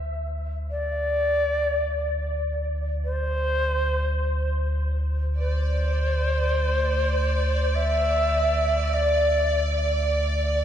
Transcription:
0, 0, Header, 1, 4, 480
1, 0, Start_track
1, 0, Tempo, 1176471
1, 289, Time_signature, 4, 2, 24, 8
1, 4343, End_track
2, 0, Start_track
2, 0, Title_t, "Shakuhachi"
2, 0, Program_c, 0, 77
2, 0, Note_on_c, 0, 76, 110
2, 48, Note_off_c, 0, 76, 0
2, 287, Note_on_c, 0, 74, 114
2, 992, Note_off_c, 0, 74, 0
2, 1243, Note_on_c, 0, 72, 118
2, 1949, Note_off_c, 0, 72, 0
2, 2201, Note_on_c, 0, 72, 101
2, 3162, Note_on_c, 0, 76, 120
2, 3168, Note_off_c, 0, 72, 0
2, 3647, Note_on_c, 0, 74, 102
2, 3653, Note_off_c, 0, 76, 0
2, 4018, Note_off_c, 0, 74, 0
2, 4119, Note_on_c, 0, 74, 103
2, 4343, Note_off_c, 0, 74, 0
2, 4343, End_track
3, 0, Start_track
3, 0, Title_t, "Violin section"
3, 0, Program_c, 1, 48
3, 2202, Note_on_c, 1, 74, 79
3, 4343, Note_off_c, 1, 74, 0
3, 4343, End_track
4, 0, Start_track
4, 0, Title_t, "Synth drone"
4, 0, Program_c, 2, 95
4, 0, Note_on_c, 2, 38, 81
4, 4343, Note_off_c, 2, 38, 0
4, 4343, End_track
0, 0, End_of_file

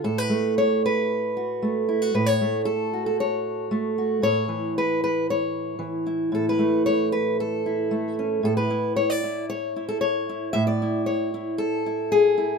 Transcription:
0, 0, Header, 1, 2, 480
1, 0, Start_track
1, 0, Key_signature, 3, "major"
1, 0, Tempo, 524934
1, 37, Time_signature, 4, 2, 24, 8
1, 11504, End_track
2, 0, Start_track
2, 0, Title_t, "Steel-string acoustic guitar"
2, 0, Program_c, 0, 25
2, 36, Note_on_c, 0, 45, 58
2, 41, Note_on_c, 0, 69, 78
2, 167, Note_off_c, 0, 69, 0
2, 167, Note_on_c, 0, 71, 93
2, 271, Note_on_c, 0, 57, 59
2, 523, Note_off_c, 0, 71, 0
2, 530, Note_on_c, 0, 73, 99
2, 764, Note_off_c, 0, 73, 0
2, 783, Note_on_c, 0, 71, 93
2, 1250, Note_on_c, 0, 66, 49
2, 1474, Note_off_c, 0, 57, 0
2, 1485, Note_on_c, 0, 57, 58
2, 1721, Note_off_c, 0, 66, 0
2, 1724, Note_on_c, 0, 64, 44
2, 1845, Note_off_c, 0, 64, 0
2, 1845, Note_on_c, 0, 66, 34
2, 1932, Note_off_c, 0, 57, 0
2, 1949, Note_off_c, 0, 71, 0
2, 1950, Note_off_c, 0, 45, 0
2, 1959, Note_on_c, 0, 45, 70
2, 1961, Note_off_c, 0, 66, 0
2, 1963, Note_on_c, 0, 71, 91
2, 2070, Note_off_c, 0, 71, 0
2, 2070, Note_on_c, 0, 73, 106
2, 2206, Note_on_c, 0, 57, 61
2, 2423, Note_off_c, 0, 73, 0
2, 2427, Note_on_c, 0, 69, 87
2, 2683, Note_on_c, 0, 66, 45
2, 2790, Note_off_c, 0, 69, 0
2, 2801, Note_on_c, 0, 69, 72
2, 2917, Note_off_c, 0, 69, 0
2, 2928, Note_on_c, 0, 73, 83
2, 3381, Note_off_c, 0, 57, 0
2, 3392, Note_on_c, 0, 57, 61
2, 3629, Note_off_c, 0, 66, 0
2, 3640, Note_on_c, 0, 66, 48
2, 3841, Note_off_c, 0, 57, 0
2, 3846, Note_off_c, 0, 66, 0
2, 3850, Note_off_c, 0, 45, 0
2, 3860, Note_off_c, 0, 73, 0
2, 3861, Note_on_c, 0, 45, 65
2, 3871, Note_on_c, 0, 73, 106
2, 4099, Note_on_c, 0, 52, 57
2, 4347, Note_off_c, 0, 73, 0
2, 4370, Note_on_c, 0, 71, 89
2, 4595, Note_off_c, 0, 71, 0
2, 4606, Note_on_c, 0, 71, 89
2, 4835, Note_off_c, 0, 71, 0
2, 4849, Note_on_c, 0, 73, 83
2, 5289, Note_off_c, 0, 52, 0
2, 5293, Note_on_c, 0, 52, 59
2, 5546, Note_on_c, 0, 64, 44
2, 5767, Note_off_c, 0, 45, 0
2, 5778, Note_on_c, 0, 45, 65
2, 5796, Note_off_c, 0, 73, 0
2, 5803, Note_on_c, 0, 69, 77
2, 5913, Note_off_c, 0, 69, 0
2, 5936, Note_on_c, 0, 71, 87
2, 6024, Note_on_c, 0, 57, 60
2, 6268, Note_off_c, 0, 71, 0
2, 6272, Note_on_c, 0, 73, 100
2, 6509, Note_off_c, 0, 73, 0
2, 6513, Note_on_c, 0, 71, 87
2, 6751, Note_off_c, 0, 71, 0
2, 6768, Note_on_c, 0, 69, 73
2, 7004, Note_off_c, 0, 64, 0
2, 7004, Note_on_c, 0, 64, 46
2, 7222, Note_off_c, 0, 57, 0
2, 7233, Note_on_c, 0, 57, 58
2, 7488, Note_on_c, 0, 61, 41
2, 7686, Note_off_c, 0, 57, 0
2, 7693, Note_off_c, 0, 61, 0
2, 7698, Note_off_c, 0, 45, 0
2, 7709, Note_on_c, 0, 45, 64
2, 7715, Note_off_c, 0, 69, 0
2, 7726, Note_on_c, 0, 69, 93
2, 7831, Note_off_c, 0, 69, 0
2, 7835, Note_on_c, 0, 71, 94
2, 7947, Note_off_c, 0, 64, 0
2, 7958, Note_on_c, 0, 64, 48
2, 8193, Note_off_c, 0, 71, 0
2, 8197, Note_on_c, 0, 73, 90
2, 8319, Note_off_c, 0, 73, 0
2, 8319, Note_on_c, 0, 74, 87
2, 8346, Note_off_c, 0, 52, 0
2, 8442, Note_off_c, 0, 64, 0
2, 8446, Note_on_c, 0, 64, 50
2, 8679, Note_off_c, 0, 74, 0
2, 8683, Note_on_c, 0, 73, 94
2, 8917, Note_off_c, 0, 64, 0
2, 8928, Note_on_c, 0, 64, 47
2, 9035, Note_off_c, 0, 73, 0
2, 9039, Note_on_c, 0, 69, 89
2, 9148, Note_off_c, 0, 69, 0
2, 9152, Note_on_c, 0, 73, 93
2, 9402, Note_off_c, 0, 64, 0
2, 9413, Note_on_c, 0, 64, 48
2, 9618, Note_off_c, 0, 64, 0
2, 9625, Note_off_c, 0, 73, 0
2, 9628, Note_off_c, 0, 45, 0
2, 9628, Note_on_c, 0, 76, 109
2, 9639, Note_on_c, 0, 45, 76
2, 9752, Note_off_c, 0, 76, 0
2, 9756, Note_on_c, 0, 74, 95
2, 9893, Note_on_c, 0, 64, 47
2, 10112, Note_off_c, 0, 74, 0
2, 10115, Note_on_c, 0, 73, 90
2, 10358, Note_off_c, 0, 64, 0
2, 10369, Note_on_c, 0, 64, 50
2, 10588, Note_off_c, 0, 73, 0
2, 10592, Note_on_c, 0, 69, 89
2, 10836, Note_off_c, 0, 64, 0
2, 10847, Note_on_c, 0, 64, 50
2, 11080, Note_on_c, 0, 68, 101
2, 11306, Note_off_c, 0, 64, 0
2, 11317, Note_on_c, 0, 64, 49
2, 11504, Note_off_c, 0, 45, 0
2, 11504, Note_off_c, 0, 64, 0
2, 11504, Note_off_c, 0, 68, 0
2, 11504, Note_off_c, 0, 69, 0
2, 11504, End_track
0, 0, End_of_file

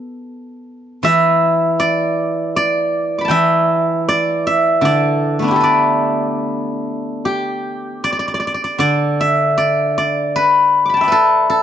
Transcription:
0, 0, Header, 1, 2, 480
1, 0, Start_track
1, 0, Tempo, 756620
1, 665, Time_signature, 4, 2, 24, 8
1, 3070, Tempo, 796813
1, 4990, Tempo, 777202
1, 5950, Tempo, 755668
1, 7250, End_track
2, 0, Start_track
2, 0, Title_t, "Guzheng"
2, 0, Program_c, 0, 107
2, 0, Note_on_c, 0, 69, 60
2, 150, Note_off_c, 0, 69, 0
2, 653, Note_on_c, 0, 52, 55
2, 663, Note_on_c, 0, 76, 83
2, 1139, Note_on_c, 0, 74, 81
2, 1624, Note_off_c, 0, 74, 0
2, 1627, Note_on_c, 0, 74, 83
2, 1755, Note_off_c, 0, 76, 0
2, 2020, Note_on_c, 0, 86, 36
2, 2036, Note_on_c, 0, 83, 40
2, 2060, Note_on_c, 0, 81, 42
2, 2081, Note_on_c, 0, 79, 48
2, 2082, Note_off_c, 0, 52, 0
2, 2090, Note_on_c, 0, 52, 52
2, 2099, Note_on_c, 0, 76, 79
2, 2589, Note_off_c, 0, 74, 0
2, 2592, Note_on_c, 0, 74, 78
2, 2793, Note_off_c, 0, 86, 0
2, 2832, Note_off_c, 0, 76, 0
2, 2834, Note_on_c, 0, 76, 72
2, 2892, Note_off_c, 0, 83, 0
2, 2979, Note_off_c, 0, 81, 0
2, 3053, Note_on_c, 0, 50, 48
2, 3067, Note_off_c, 0, 79, 0
2, 3074, Note_off_c, 0, 74, 0
2, 3077, Note_on_c, 0, 74, 73
2, 3403, Note_on_c, 0, 57, 29
2, 3421, Note_on_c, 0, 59, 28
2, 3431, Note_on_c, 0, 62, 28
2, 3455, Note_on_c, 0, 64, 33
2, 3474, Note_on_c, 0, 67, 36
2, 3503, Note_on_c, 0, 69, 38
2, 3531, Note_on_c, 0, 71, 40
2, 3533, Note_off_c, 0, 52, 0
2, 3547, Note_off_c, 0, 74, 0
2, 3550, Note_on_c, 0, 74, 62
2, 3883, Note_off_c, 0, 76, 0
2, 4509, Note_off_c, 0, 50, 0
2, 4521, Note_off_c, 0, 67, 0
2, 4523, Note_on_c, 0, 67, 59
2, 4662, Note_off_c, 0, 74, 0
2, 4763, Note_off_c, 0, 71, 0
2, 4825, Note_off_c, 0, 69, 0
2, 4997, Note_on_c, 0, 74, 74
2, 5027, Note_off_c, 0, 64, 0
2, 5048, Note_off_c, 0, 74, 0
2, 5051, Note_on_c, 0, 74, 51
2, 5089, Note_off_c, 0, 74, 0
2, 5092, Note_on_c, 0, 74, 53
2, 5121, Note_off_c, 0, 62, 0
2, 5142, Note_off_c, 0, 74, 0
2, 5145, Note_on_c, 0, 74, 42
2, 5182, Note_off_c, 0, 74, 0
2, 5184, Note_on_c, 0, 74, 49
2, 5216, Note_off_c, 0, 74, 0
2, 5219, Note_on_c, 0, 74, 40
2, 5262, Note_off_c, 0, 74, 0
2, 5264, Note_on_c, 0, 74, 46
2, 5296, Note_off_c, 0, 59, 0
2, 5307, Note_off_c, 0, 74, 0
2, 5309, Note_on_c, 0, 74, 42
2, 5366, Note_off_c, 0, 74, 0
2, 5369, Note_on_c, 0, 74, 47
2, 5417, Note_off_c, 0, 57, 0
2, 5458, Note_on_c, 0, 50, 45
2, 5464, Note_off_c, 0, 74, 0
2, 5466, Note_on_c, 0, 74, 77
2, 5718, Note_on_c, 0, 76, 67
2, 5945, Note_off_c, 0, 74, 0
2, 5947, Note_on_c, 0, 74, 68
2, 5966, Note_off_c, 0, 67, 0
2, 6200, Note_off_c, 0, 74, 0
2, 6202, Note_on_c, 0, 74, 70
2, 6443, Note_on_c, 0, 71, 74
2, 6760, Note_on_c, 0, 86, 29
2, 6785, Note_on_c, 0, 83, 29
2, 6805, Note_off_c, 0, 76, 0
2, 6812, Note_on_c, 0, 81, 37
2, 6830, Note_on_c, 0, 79, 35
2, 6858, Note_on_c, 0, 76, 40
2, 6871, Note_off_c, 0, 74, 0
2, 6874, Note_on_c, 0, 74, 38
2, 6898, Note_off_c, 0, 71, 0
2, 6900, Note_on_c, 0, 71, 44
2, 6907, Note_off_c, 0, 50, 0
2, 6927, Note_on_c, 0, 69, 71
2, 7165, Note_off_c, 0, 69, 0
2, 7167, Note_on_c, 0, 69, 66
2, 7250, Note_off_c, 0, 69, 0
2, 7250, Note_off_c, 0, 71, 0
2, 7250, Note_off_c, 0, 74, 0
2, 7250, Note_off_c, 0, 76, 0
2, 7250, Note_off_c, 0, 79, 0
2, 7250, Note_off_c, 0, 81, 0
2, 7250, Note_off_c, 0, 83, 0
2, 7250, Note_off_c, 0, 86, 0
2, 7250, End_track
0, 0, End_of_file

